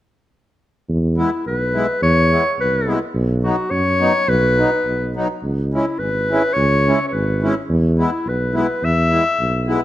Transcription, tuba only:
0.89 E2
1.46 B1
2.02 E2
2.58 C2
3.15 B1
3.71 F#2
4.28 B1
4.85 B1
5.43 C#2
5.99 G#1
6.56 C#2
7.13 G#1
7.69 E2
8.25 B1
8.83 E2
9.39 B1

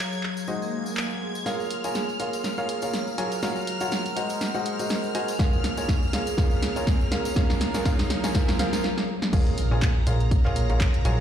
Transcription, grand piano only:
Already playing: F#3 F4 F#4 A#4 C#5 F5
0.48 G#3 D#4 F#4 G#4 C5 D#5
1.46 A#3 F4 G#4 A#4 C#5 F5
1.84 A#3 F4 G#4 A#4 C#5 G#5
2.20 A#3 F4 G#4 A#4 C#5 F5
2.58 A#3 F4 G#4 A#4 C#5 F5
2.83 A#3 F4 G#4 A#4 C#5 F5
3.18 F#3 F4 G#4 A#4 C#5 G#5
3.43 F#3 F4 F#4 A#4 C#5 F5
3.81 F#3 F4 F#4 A#4 C#5 F#5
4.16 G#3 F#4 G#4 C5 D#5 F#5
4.55 G#3 F#4 G#4 C5 D#5 F#5
4.79 G#3 F#4 G#4 C5 D#5 F#5
5.15 F#4 G#4 C5 D#5 G#5
5.39 A#3 F4 G#4 A#4 C#5 F5
5.78 A#3 F4 G#4 A#4 C#5 G#5
6.13 A#3 F4 G#4 A#4 C#5 F5
6.38 A#3 F4 G#4 A#4 C#5 F5
6.76 A#3 F4 G#4 A#4 C#5 G#5
7.12 A#3 F4 G#4 A#4 C#5 F5
7.36 A#3 F4 G#4 A#4 C#5 F5
7.75 A#3 F4 G#4 A#4 C#5 G#5
7.85 A#3 F4 G#4 A#4 C#5 F5
8.24 A#3 F4 G#4 A#4 C#5 G#5
8.35 A#3 F4 G#4 A#4 C5 F5
8.59 A#3 F4 G#4 A#4 C5 F5
9.33 A#3 F4 G#4 A#4 C#5 F5
9.71 A#3 F4 G#4 A#4 C#5 G#5
10.07 A#3 F4 G#4 A#4 C#5 F5
10.45 A#3 F4 G#4 A#4 C#5 F5
10.70 A#3 F4 G#4 A#4 C#5 F5
11.05 F#3 F4 G#4 A#4 C#5 G#5

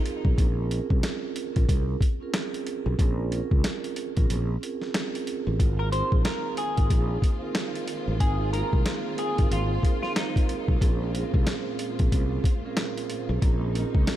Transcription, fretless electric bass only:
0.25 B1
0.38 A#1
0.90 C2
1.56 A#1
1.69 C2
2.86 B1
2.99 A#1
3.51 C#2
4.17 A#1
4.30 A#1
5.47 A1
5.60 G#1
6.12 A#1
6.78 G#1
6.90 A#1
8.07 A1
8.20 G#1
8.73 C2
9.39 G#1
9.51 G#1
10.68 B1
10.81 A#1
11.34 C2
12.00 A#1
12.12 C2
13.29 B1
13.42 A#1
13.95 C#2

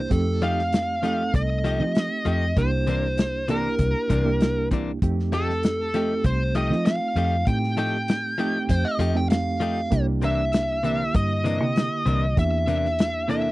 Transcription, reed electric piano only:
0.09 A3 C4 D#4 G4
1.02 A3 C4 D#4 A4
1.79 A3 C4 D#4 G4
2.56 A#3 D4 E4 G4
3.49 A#3 D4 E4 G4
4.25 A#3 D4 E4 G4
5.02 A3 C4 D#4 G4
5.94 A3 C4 D#4 G4
6.70 A3 C4 D#4 F4
7.47 A3 C4 D#4 G4
8.38 A3 C4 D#4 G4
9.15 A3 C4 D#4 G4
9.91 A#3 D4 E4 G4
10.83 D3 A#3 E4 G4
11.60 D3 A#3 E4 G4
12.37 A#3 D4 E4 G4
13.28 A#3 D4 E4 A4

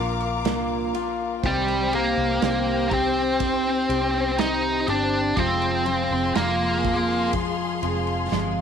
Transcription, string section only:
Already playing: A#4 F5 D6
1.43 C5 G5
5.37 G#4 F5 C6

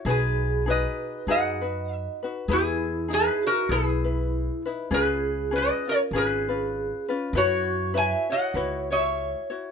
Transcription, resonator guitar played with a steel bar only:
0.09 G#4 B4
0.70 B4 D#5
1.31 D#5 F#5
1.94 E5
2.51 E4 G#4
3.13 G#4 B4
3.47 F#4 A#4
3.72 E4 G#4
4.94 G#4 B4
5.56 B4 D#5
5.89 A#4 C#5
6.16 G#4 B4
7.37 F#4 C#5
7.97 E5 G#5
8.32 D#5 F#5
8.92 C#5 E5

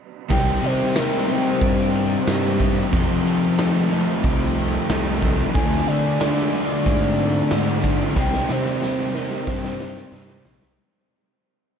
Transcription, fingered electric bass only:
0.31 C2
0.63 C3
1.62 G2
2.27 G2
2.93 F2
3.24 F3
4.24 C2
4.89 C2
5.55 D2
5.88 D3
6.87 G#2
7.52 G#2
8.16 C2
8.50 C3
9.48 G2
10.12 G2
10.46 A#1
10.63 C2

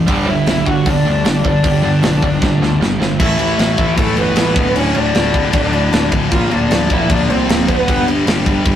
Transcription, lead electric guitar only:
0.27 E4 E5
0.67 F#4 F#5
0.87 D4 D5
1.45 D4 D5
3.20 E4 E5
3.98 A3 A4
4.18 B3 B4
4.75 C#4 C#5
4.96 D4 D5
6.32 F4 F5
6.52 D4 D5
6.92 E4 E5
7.10 D4 D5
7.30 C4 C5
7.68 B3 B4

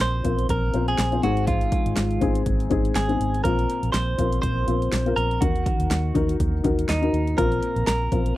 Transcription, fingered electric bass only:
0.00 A#1
0.25 A#1
0.49 A#1
0.74 A#1
0.98 A#1
1.23 G#1
1.86 G#1
1.97 G#1
2.22 G#1
2.46 G#1
2.71 G#1
2.95 G#1
3.20 G#1
3.45 A#1
3.83 A#1
3.94 A#1
4.19 A#1
4.43 A#1
4.68 A#1
4.92 A#1
5.16 A#1
5.42 D#2
5.80 D#2
5.90 D#2
6.15 D#2
6.40 D#2
6.64 D#2
6.88 D#2
7.13 D#2
7.38 A#1
7.76 A#1
7.87 A#1
8.12 A#1

